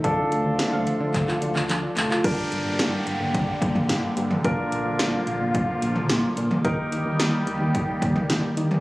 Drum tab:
CC |----------------|x---------------|----------------|----------------|
HH |x-x-x-x-x-x-x-x-|x-x-x-x-x-x-x-x-|x-x-x-x-x-x-x-x-|x-x-x-x-x-x-x-x-|
CP |--------xx-xx-xx|----------------|----------------|----------------|
SD |----o-----------|----o-------o---|----o-------o---|----o-------o---|
T2 |----------------|-----------o---o|-----------o---o|-----------o---o|
BD |o-------o-------|o-------o-o-----|o-------o-------|o-------o-o-----|